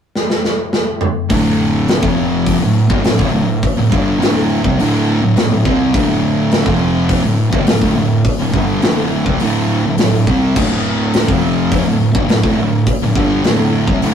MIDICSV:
0, 0, Header, 1, 4, 480
1, 0, Start_track
1, 0, Key_signature, -1, "minor"
1, 0, Tempo, 578592
1, 1078, Time_signature, 4, 2, 24, 8
1, 11731, End_track
2, 0, Start_track
2, 0, Title_t, "Distorted electric guitar"
2, 0, Program_c, 0, 30
2, 1080, Note_on_c, 0, 38, 101
2, 1084, Note_on_c, 0, 45, 94
2, 1090, Note_on_c, 0, 50, 114
2, 1675, Note_off_c, 0, 38, 0
2, 1677, Note_off_c, 0, 45, 0
2, 1680, Note_off_c, 0, 50, 0
2, 1683, Note_on_c, 0, 41, 96
2, 1692, Note_on_c, 0, 48, 90
2, 1696, Note_on_c, 0, 53, 105
2, 2157, Note_off_c, 0, 41, 0
2, 2161, Note_off_c, 0, 48, 0
2, 2163, Note_off_c, 0, 53, 0
2, 2170, Note_on_c, 0, 45, 68
2, 2171, Note_on_c, 0, 38, 66
2, 2359, Note_off_c, 0, 45, 0
2, 2360, Note_off_c, 0, 38, 0
2, 2401, Note_on_c, 0, 43, 98
2, 2408, Note_on_c, 0, 50, 93
2, 2516, Note_off_c, 0, 43, 0
2, 2519, Note_off_c, 0, 50, 0
2, 2532, Note_on_c, 0, 38, 69
2, 2532, Note_on_c, 0, 45, 77
2, 2637, Note_off_c, 0, 38, 0
2, 2642, Note_off_c, 0, 45, 0
2, 2647, Note_on_c, 0, 38, 95
2, 2652, Note_on_c, 0, 45, 104
2, 2759, Note_off_c, 0, 38, 0
2, 2762, Note_off_c, 0, 45, 0
2, 2768, Note_on_c, 0, 38, 67
2, 2776, Note_on_c, 0, 45, 68
2, 2959, Note_off_c, 0, 38, 0
2, 2963, Note_off_c, 0, 45, 0
2, 3136, Note_on_c, 0, 38, 61
2, 3142, Note_on_c, 0, 45, 68
2, 3241, Note_off_c, 0, 38, 0
2, 3245, Note_on_c, 0, 43, 86
2, 3249, Note_off_c, 0, 45, 0
2, 3252, Note_on_c, 0, 50, 93
2, 3258, Note_on_c, 0, 55, 99
2, 3479, Note_off_c, 0, 43, 0
2, 3483, Note_off_c, 0, 50, 0
2, 3486, Note_off_c, 0, 55, 0
2, 3486, Note_on_c, 0, 38, 104
2, 3493, Note_on_c, 0, 45, 107
2, 3502, Note_on_c, 0, 50, 108
2, 3839, Note_off_c, 0, 38, 0
2, 3843, Note_on_c, 0, 48, 98
2, 3844, Note_off_c, 0, 45, 0
2, 3848, Note_off_c, 0, 50, 0
2, 3854, Note_on_c, 0, 55, 95
2, 3958, Note_off_c, 0, 48, 0
2, 3964, Note_off_c, 0, 55, 0
2, 3966, Note_on_c, 0, 38, 94
2, 3974, Note_on_c, 0, 45, 100
2, 3982, Note_on_c, 0, 50, 122
2, 4320, Note_off_c, 0, 38, 0
2, 4321, Note_off_c, 0, 45, 0
2, 4328, Note_off_c, 0, 50, 0
2, 4331, Note_on_c, 0, 38, 72
2, 4331, Note_on_c, 0, 45, 83
2, 4438, Note_off_c, 0, 38, 0
2, 4442, Note_off_c, 0, 45, 0
2, 4448, Note_on_c, 0, 38, 67
2, 4452, Note_on_c, 0, 45, 65
2, 4559, Note_off_c, 0, 38, 0
2, 4560, Note_off_c, 0, 45, 0
2, 4569, Note_on_c, 0, 38, 68
2, 4570, Note_on_c, 0, 45, 81
2, 4683, Note_off_c, 0, 38, 0
2, 4686, Note_on_c, 0, 48, 78
2, 4687, Note_off_c, 0, 45, 0
2, 4690, Note_on_c, 0, 55, 89
2, 4698, Note_on_c, 0, 60, 103
2, 4920, Note_off_c, 0, 48, 0
2, 4922, Note_off_c, 0, 55, 0
2, 4926, Note_off_c, 0, 60, 0
2, 4926, Note_on_c, 0, 38, 99
2, 4931, Note_on_c, 0, 45, 108
2, 4937, Note_on_c, 0, 50, 105
2, 5516, Note_off_c, 0, 38, 0
2, 5519, Note_on_c, 0, 41, 93
2, 5522, Note_off_c, 0, 45, 0
2, 5525, Note_on_c, 0, 48, 97
2, 5526, Note_off_c, 0, 50, 0
2, 5531, Note_on_c, 0, 53, 108
2, 5997, Note_off_c, 0, 41, 0
2, 6000, Note_off_c, 0, 48, 0
2, 6002, Note_on_c, 0, 38, 65
2, 6003, Note_off_c, 0, 53, 0
2, 6004, Note_on_c, 0, 45, 77
2, 6197, Note_off_c, 0, 38, 0
2, 6198, Note_off_c, 0, 45, 0
2, 6234, Note_on_c, 0, 43, 98
2, 6241, Note_on_c, 0, 50, 117
2, 6354, Note_off_c, 0, 43, 0
2, 6358, Note_off_c, 0, 50, 0
2, 6364, Note_on_c, 0, 38, 79
2, 6365, Note_on_c, 0, 45, 81
2, 6470, Note_off_c, 0, 38, 0
2, 6477, Note_off_c, 0, 45, 0
2, 6480, Note_on_c, 0, 38, 102
2, 6487, Note_on_c, 0, 45, 101
2, 6589, Note_off_c, 0, 38, 0
2, 6596, Note_off_c, 0, 45, 0
2, 6599, Note_on_c, 0, 38, 55
2, 6606, Note_on_c, 0, 45, 64
2, 6795, Note_off_c, 0, 38, 0
2, 6799, Note_off_c, 0, 45, 0
2, 6960, Note_on_c, 0, 38, 64
2, 6961, Note_on_c, 0, 45, 72
2, 7077, Note_off_c, 0, 38, 0
2, 7080, Note_on_c, 0, 43, 97
2, 7083, Note_off_c, 0, 45, 0
2, 7086, Note_on_c, 0, 50, 93
2, 7092, Note_on_c, 0, 55, 98
2, 7316, Note_off_c, 0, 43, 0
2, 7319, Note_off_c, 0, 50, 0
2, 7322, Note_off_c, 0, 55, 0
2, 7324, Note_on_c, 0, 38, 101
2, 7328, Note_on_c, 0, 45, 89
2, 7334, Note_on_c, 0, 50, 103
2, 7673, Note_off_c, 0, 38, 0
2, 7677, Note_on_c, 0, 48, 84
2, 7679, Note_off_c, 0, 45, 0
2, 7682, Note_off_c, 0, 50, 0
2, 7685, Note_on_c, 0, 55, 97
2, 7794, Note_off_c, 0, 48, 0
2, 7798, Note_off_c, 0, 55, 0
2, 7799, Note_on_c, 0, 38, 89
2, 7803, Note_on_c, 0, 45, 102
2, 7811, Note_on_c, 0, 50, 115
2, 8154, Note_off_c, 0, 38, 0
2, 8156, Note_off_c, 0, 45, 0
2, 8160, Note_off_c, 0, 50, 0
2, 8169, Note_on_c, 0, 38, 81
2, 8172, Note_on_c, 0, 45, 74
2, 8281, Note_off_c, 0, 38, 0
2, 8284, Note_off_c, 0, 45, 0
2, 8291, Note_on_c, 0, 38, 64
2, 8294, Note_on_c, 0, 45, 72
2, 8395, Note_off_c, 0, 38, 0
2, 8398, Note_off_c, 0, 45, 0
2, 8405, Note_on_c, 0, 38, 65
2, 8408, Note_on_c, 0, 45, 76
2, 8517, Note_off_c, 0, 38, 0
2, 8520, Note_on_c, 0, 48, 83
2, 8522, Note_off_c, 0, 45, 0
2, 8525, Note_on_c, 0, 55, 73
2, 8532, Note_on_c, 0, 60, 79
2, 8754, Note_off_c, 0, 48, 0
2, 8757, Note_off_c, 0, 55, 0
2, 8758, Note_on_c, 0, 38, 92
2, 8760, Note_off_c, 0, 60, 0
2, 8765, Note_on_c, 0, 45, 100
2, 8770, Note_on_c, 0, 50, 114
2, 9352, Note_off_c, 0, 38, 0
2, 9355, Note_off_c, 0, 45, 0
2, 9357, Note_off_c, 0, 50, 0
2, 9357, Note_on_c, 0, 41, 107
2, 9367, Note_on_c, 0, 48, 106
2, 9372, Note_on_c, 0, 53, 103
2, 9830, Note_off_c, 0, 41, 0
2, 9835, Note_off_c, 0, 48, 0
2, 9838, Note_off_c, 0, 53, 0
2, 9843, Note_on_c, 0, 38, 64
2, 9850, Note_on_c, 0, 45, 66
2, 10032, Note_off_c, 0, 38, 0
2, 10036, Note_off_c, 0, 45, 0
2, 10085, Note_on_c, 0, 43, 89
2, 10091, Note_on_c, 0, 50, 109
2, 10194, Note_off_c, 0, 43, 0
2, 10197, Note_off_c, 0, 50, 0
2, 10204, Note_on_c, 0, 38, 69
2, 10211, Note_on_c, 0, 45, 73
2, 10310, Note_off_c, 0, 38, 0
2, 10319, Note_off_c, 0, 45, 0
2, 10320, Note_on_c, 0, 38, 95
2, 10329, Note_on_c, 0, 45, 92
2, 10431, Note_off_c, 0, 38, 0
2, 10435, Note_off_c, 0, 45, 0
2, 10444, Note_on_c, 0, 38, 57
2, 10450, Note_on_c, 0, 45, 68
2, 10632, Note_off_c, 0, 38, 0
2, 10635, Note_off_c, 0, 45, 0
2, 10802, Note_on_c, 0, 38, 67
2, 10809, Note_on_c, 0, 45, 68
2, 10912, Note_off_c, 0, 38, 0
2, 10916, Note_on_c, 0, 43, 92
2, 10919, Note_off_c, 0, 45, 0
2, 10922, Note_on_c, 0, 50, 104
2, 10927, Note_on_c, 0, 55, 105
2, 11147, Note_off_c, 0, 43, 0
2, 11150, Note_off_c, 0, 50, 0
2, 11153, Note_off_c, 0, 55, 0
2, 11153, Note_on_c, 0, 38, 93
2, 11159, Note_on_c, 0, 45, 106
2, 11164, Note_on_c, 0, 50, 105
2, 11504, Note_off_c, 0, 38, 0
2, 11507, Note_off_c, 0, 45, 0
2, 11510, Note_off_c, 0, 50, 0
2, 11517, Note_on_c, 0, 48, 90
2, 11523, Note_on_c, 0, 55, 99
2, 11627, Note_off_c, 0, 48, 0
2, 11630, Note_off_c, 0, 55, 0
2, 11632, Note_on_c, 0, 38, 96
2, 11640, Note_on_c, 0, 45, 109
2, 11646, Note_on_c, 0, 50, 115
2, 11731, Note_off_c, 0, 38, 0
2, 11731, Note_off_c, 0, 45, 0
2, 11731, Note_off_c, 0, 50, 0
2, 11731, End_track
3, 0, Start_track
3, 0, Title_t, "Fingered electric bass"
3, 0, Program_c, 1, 33
3, 1080, Note_on_c, 1, 26, 90
3, 1649, Note_off_c, 1, 26, 0
3, 1682, Note_on_c, 1, 29, 94
3, 2130, Note_off_c, 1, 29, 0
3, 2173, Note_on_c, 1, 26, 81
3, 2393, Note_off_c, 1, 26, 0
3, 2407, Note_on_c, 1, 31, 85
3, 2518, Note_off_c, 1, 31, 0
3, 2534, Note_on_c, 1, 26, 84
3, 2641, Note_off_c, 1, 26, 0
3, 2651, Note_on_c, 1, 26, 94
3, 2760, Note_off_c, 1, 26, 0
3, 2775, Note_on_c, 1, 26, 89
3, 2994, Note_off_c, 1, 26, 0
3, 3126, Note_on_c, 1, 26, 79
3, 3238, Note_off_c, 1, 26, 0
3, 3255, Note_on_c, 1, 31, 97
3, 3475, Note_off_c, 1, 31, 0
3, 3497, Note_on_c, 1, 26, 101
3, 3828, Note_off_c, 1, 26, 0
3, 3851, Note_on_c, 1, 36, 99
3, 3961, Note_off_c, 1, 36, 0
3, 3972, Note_on_c, 1, 26, 103
3, 4305, Note_off_c, 1, 26, 0
3, 4332, Note_on_c, 1, 26, 87
3, 4442, Note_off_c, 1, 26, 0
3, 4455, Note_on_c, 1, 26, 84
3, 4564, Note_off_c, 1, 26, 0
3, 4575, Note_on_c, 1, 26, 81
3, 4684, Note_off_c, 1, 26, 0
3, 4691, Note_on_c, 1, 36, 98
3, 4913, Note_off_c, 1, 36, 0
3, 4928, Note_on_c, 1, 26, 106
3, 5495, Note_off_c, 1, 26, 0
3, 5524, Note_on_c, 1, 29, 97
3, 5973, Note_off_c, 1, 29, 0
3, 6007, Note_on_c, 1, 26, 81
3, 6231, Note_off_c, 1, 26, 0
3, 6243, Note_on_c, 1, 31, 101
3, 6357, Note_off_c, 1, 31, 0
3, 6362, Note_on_c, 1, 26, 86
3, 6477, Note_off_c, 1, 26, 0
3, 6483, Note_on_c, 1, 26, 107
3, 6597, Note_off_c, 1, 26, 0
3, 6603, Note_on_c, 1, 26, 94
3, 6828, Note_off_c, 1, 26, 0
3, 6960, Note_on_c, 1, 26, 74
3, 7075, Note_off_c, 1, 26, 0
3, 7083, Note_on_c, 1, 31, 89
3, 7308, Note_off_c, 1, 31, 0
3, 7322, Note_on_c, 1, 26, 94
3, 7658, Note_off_c, 1, 26, 0
3, 7682, Note_on_c, 1, 36, 95
3, 7795, Note_off_c, 1, 36, 0
3, 7806, Note_on_c, 1, 26, 106
3, 8140, Note_off_c, 1, 26, 0
3, 8162, Note_on_c, 1, 26, 74
3, 8275, Note_off_c, 1, 26, 0
3, 8284, Note_on_c, 1, 26, 82
3, 8396, Note_off_c, 1, 26, 0
3, 8406, Note_on_c, 1, 26, 84
3, 8516, Note_off_c, 1, 26, 0
3, 8522, Note_on_c, 1, 36, 110
3, 8745, Note_off_c, 1, 36, 0
3, 8764, Note_on_c, 1, 26, 99
3, 9328, Note_off_c, 1, 26, 0
3, 9362, Note_on_c, 1, 29, 94
3, 9807, Note_off_c, 1, 29, 0
3, 9841, Note_on_c, 1, 26, 84
3, 10062, Note_off_c, 1, 26, 0
3, 10077, Note_on_c, 1, 31, 90
3, 10189, Note_off_c, 1, 31, 0
3, 10201, Note_on_c, 1, 26, 86
3, 10310, Note_off_c, 1, 26, 0
3, 10317, Note_on_c, 1, 26, 87
3, 10428, Note_off_c, 1, 26, 0
3, 10439, Note_on_c, 1, 26, 94
3, 10660, Note_off_c, 1, 26, 0
3, 10798, Note_on_c, 1, 26, 67
3, 10908, Note_off_c, 1, 26, 0
3, 10914, Note_on_c, 1, 31, 99
3, 11136, Note_off_c, 1, 31, 0
3, 11158, Note_on_c, 1, 26, 91
3, 11489, Note_off_c, 1, 26, 0
3, 11509, Note_on_c, 1, 36, 101
3, 11621, Note_off_c, 1, 36, 0
3, 11637, Note_on_c, 1, 26, 106
3, 11731, Note_off_c, 1, 26, 0
3, 11731, End_track
4, 0, Start_track
4, 0, Title_t, "Drums"
4, 129, Note_on_c, 9, 38, 61
4, 211, Note_off_c, 9, 38, 0
4, 250, Note_on_c, 9, 38, 75
4, 333, Note_off_c, 9, 38, 0
4, 369, Note_on_c, 9, 38, 73
4, 452, Note_off_c, 9, 38, 0
4, 605, Note_on_c, 9, 38, 93
4, 688, Note_off_c, 9, 38, 0
4, 836, Note_on_c, 9, 45, 88
4, 919, Note_off_c, 9, 45, 0
4, 1077, Note_on_c, 9, 46, 65
4, 1078, Note_on_c, 9, 36, 118
4, 1160, Note_off_c, 9, 46, 0
4, 1161, Note_off_c, 9, 36, 0
4, 1561, Note_on_c, 9, 46, 60
4, 1572, Note_on_c, 9, 38, 121
4, 1644, Note_off_c, 9, 46, 0
4, 1655, Note_off_c, 9, 38, 0
4, 1682, Note_on_c, 9, 36, 117
4, 1765, Note_off_c, 9, 36, 0
4, 2045, Note_on_c, 9, 36, 100
4, 2046, Note_on_c, 9, 46, 63
4, 2128, Note_off_c, 9, 36, 0
4, 2129, Note_off_c, 9, 46, 0
4, 2405, Note_on_c, 9, 36, 110
4, 2488, Note_off_c, 9, 36, 0
4, 2525, Note_on_c, 9, 46, 63
4, 2536, Note_on_c, 9, 38, 127
4, 2608, Note_off_c, 9, 46, 0
4, 2619, Note_off_c, 9, 38, 0
4, 2648, Note_on_c, 9, 36, 104
4, 2731, Note_off_c, 9, 36, 0
4, 3011, Note_on_c, 9, 36, 104
4, 3017, Note_on_c, 9, 46, 71
4, 3094, Note_off_c, 9, 36, 0
4, 3100, Note_off_c, 9, 46, 0
4, 3253, Note_on_c, 9, 36, 102
4, 3336, Note_off_c, 9, 36, 0
4, 3502, Note_on_c, 9, 46, 63
4, 3513, Note_on_c, 9, 38, 118
4, 3585, Note_off_c, 9, 46, 0
4, 3595, Note_off_c, 9, 38, 0
4, 3853, Note_on_c, 9, 36, 97
4, 3936, Note_off_c, 9, 36, 0
4, 3979, Note_on_c, 9, 46, 56
4, 4061, Note_off_c, 9, 46, 0
4, 4452, Note_on_c, 9, 46, 54
4, 4463, Note_on_c, 9, 38, 109
4, 4535, Note_off_c, 9, 46, 0
4, 4546, Note_off_c, 9, 38, 0
4, 4690, Note_on_c, 9, 36, 106
4, 4773, Note_off_c, 9, 36, 0
4, 4929, Note_on_c, 9, 36, 118
4, 4933, Note_on_c, 9, 46, 61
4, 5012, Note_off_c, 9, 36, 0
4, 5016, Note_off_c, 9, 46, 0
4, 5405, Note_on_c, 9, 46, 58
4, 5415, Note_on_c, 9, 38, 119
4, 5488, Note_off_c, 9, 46, 0
4, 5498, Note_off_c, 9, 38, 0
4, 5525, Note_on_c, 9, 36, 109
4, 5608, Note_off_c, 9, 36, 0
4, 5884, Note_on_c, 9, 36, 107
4, 5885, Note_on_c, 9, 46, 68
4, 5967, Note_off_c, 9, 36, 0
4, 5968, Note_off_c, 9, 46, 0
4, 6244, Note_on_c, 9, 36, 115
4, 6327, Note_off_c, 9, 36, 0
4, 6361, Note_on_c, 9, 46, 68
4, 6372, Note_on_c, 9, 38, 119
4, 6444, Note_off_c, 9, 46, 0
4, 6455, Note_off_c, 9, 38, 0
4, 6483, Note_on_c, 9, 36, 93
4, 6566, Note_off_c, 9, 36, 0
4, 6840, Note_on_c, 9, 46, 70
4, 6842, Note_on_c, 9, 36, 105
4, 6923, Note_off_c, 9, 46, 0
4, 6925, Note_off_c, 9, 36, 0
4, 7081, Note_on_c, 9, 36, 97
4, 7164, Note_off_c, 9, 36, 0
4, 7319, Note_on_c, 9, 46, 59
4, 7330, Note_on_c, 9, 38, 122
4, 7402, Note_off_c, 9, 46, 0
4, 7413, Note_off_c, 9, 38, 0
4, 7682, Note_on_c, 9, 36, 90
4, 7764, Note_off_c, 9, 36, 0
4, 7794, Note_on_c, 9, 46, 58
4, 7877, Note_off_c, 9, 46, 0
4, 8278, Note_on_c, 9, 46, 68
4, 8289, Note_on_c, 9, 38, 104
4, 8361, Note_off_c, 9, 46, 0
4, 8372, Note_off_c, 9, 38, 0
4, 8522, Note_on_c, 9, 36, 99
4, 8605, Note_off_c, 9, 36, 0
4, 8762, Note_on_c, 9, 36, 117
4, 8763, Note_on_c, 9, 49, 113
4, 8845, Note_off_c, 9, 36, 0
4, 8846, Note_off_c, 9, 49, 0
4, 9239, Note_on_c, 9, 46, 68
4, 9249, Note_on_c, 9, 38, 118
4, 9322, Note_off_c, 9, 46, 0
4, 9332, Note_off_c, 9, 38, 0
4, 9362, Note_on_c, 9, 36, 116
4, 9445, Note_off_c, 9, 36, 0
4, 9720, Note_on_c, 9, 46, 60
4, 9721, Note_on_c, 9, 36, 107
4, 9803, Note_off_c, 9, 46, 0
4, 9804, Note_off_c, 9, 36, 0
4, 10078, Note_on_c, 9, 36, 117
4, 10161, Note_off_c, 9, 36, 0
4, 10196, Note_on_c, 9, 46, 64
4, 10207, Note_on_c, 9, 38, 120
4, 10279, Note_off_c, 9, 46, 0
4, 10290, Note_off_c, 9, 38, 0
4, 10316, Note_on_c, 9, 36, 105
4, 10399, Note_off_c, 9, 36, 0
4, 10671, Note_on_c, 9, 46, 61
4, 10675, Note_on_c, 9, 36, 118
4, 10754, Note_off_c, 9, 46, 0
4, 10758, Note_off_c, 9, 36, 0
4, 10913, Note_on_c, 9, 36, 109
4, 10996, Note_off_c, 9, 36, 0
4, 11151, Note_on_c, 9, 46, 67
4, 11162, Note_on_c, 9, 38, 125
4, 11234, Note_off_c, 9, 46, 0
4, 11245, Note_off_c, 9, 38, 0
4, 11511, Note_on_c, 9, 36, 102
4, 11594, Note_off_c, 9, 36, 0
4, 11633, Note_on_c, 9, 46, 63
4, 11716, Note_off_c, 9, 46, 0
4, 11731, End_track
0, 0, End_of_file